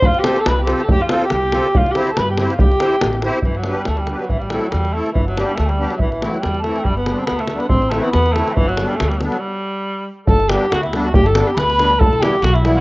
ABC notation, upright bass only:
X:1
M:2/4
L:1/8
Q:"Swing 16ths" 1/4=140
K:C
V:1 name="Upright bass" clef=bass
F,, z C,,2 | F,, z C,,2 | C,, z G,,2 | C,, z A,,,2 |
[K:G] G,,,2 D,,2 | A,,,2 E,,2 | G,,,2 D,,2 | A,,,2 E,,2 |
G,,,2 D,,2 | A,,,2 E,,2 | G,,,2 D,,2 | z4 |
G,,,2 D,,2 | G,,,2 D,,2 | E,,,2 B,,,2 |]